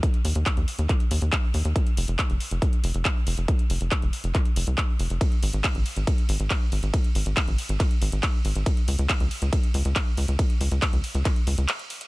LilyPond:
<<
  \new Staff \with { instrumentName = "Analog synth bass" } { \clef bass \time 4/4 \key f \phrygian \tempo 4 = 139 r8 ees,16 ees,16 r16 ees,16 r16 ees,16 r8 ees,16 ees,16 r8 ees,16 ees,16 | r8 f,,16 f,,16 r16 f,,16 r16 f,,16 r8 f,,16 f,,16 r8 f,,16 f,,16 | r8 f,,16 f,,16 r16 f,,16 r16 f,,16 r8 f,,16 c,16 r8 f,,16 f,,16 | r8 aes,,16 aes,,16 r16 aes,,16 r16 aes,,16 r8 aes,,16 aes,,16 r8 aes,,16 aes,,16 |
r8 aes,,16 aes,,16 r16 aes,,16 r16 aes,,16 r8 aes,,16 aes,,16 r8 aes,,16 aes,,16 | r8 des,16 des,16 r16 des,16 r16 des,16 r8 des,16 des,16 r8 des,16 des,16 | r8 des,16 des,16 r16 des,16 r16 des,16 r8 des,16 des,16 r4 | }
  \new DrumStaff \with { instrumentName = "Drums" } \drummode { \time 4/4 <hh bd>16 hh16 hho16 hh16 <hc hh bd>16 hh16 hho16 hh16 <hc hh bd>16 hh16 hho16 hh16 <hc hh bd>8 hho16 hh16 | <hh bd>16 hh16 hho16 hh16 <hc hh bd>16 hh16 hho16 hh16 <hh bd>16 hh16 hho16 hh16 <hc hh bd>8 hho16 hh16 | <hh bd>16 hh16 hho16 hh16 <hc hh bd>16 hh16 hho16 hh16 <hc hh bd>16 hh16 hho16 hh16 <hc hh bd>8 hho16 hh16 | <hh bd cymr>16 hh16 hho16 hh16 <hc hh bd cymr>16 hh16 hho16 hh16 <hh bd cymr>16 hh16 hho16 hh16 <hc hh bd cymr>8 hho16 hh16 |
<hh bd cymr>16 hh16 hho16 hh16 <hc hh bd cymr>16 hh16 hho16 hh16 <hc hh bd cymr>16 hh16 hho16 hh16 <hc hh bd cymr>8 hho16 hh16 | <hh bd cymr>16 hh16 hho16 hh16 <hc hh bd cymr>16 hh16 hho16 hh16 <hh bd cymr>16 hh16 hho16 hh16 <hc hh bd cymr>8 hho16 hh16 | <hh bd cymr>16 hh16 hho16 hh16 <hc hh bd cymr>16 hh16 hho16 hh16 <hc hh bd cymr>16 hh16 hho16 hh16 <hc hh cymr>16 hh16 hho16 hh16 | }
>>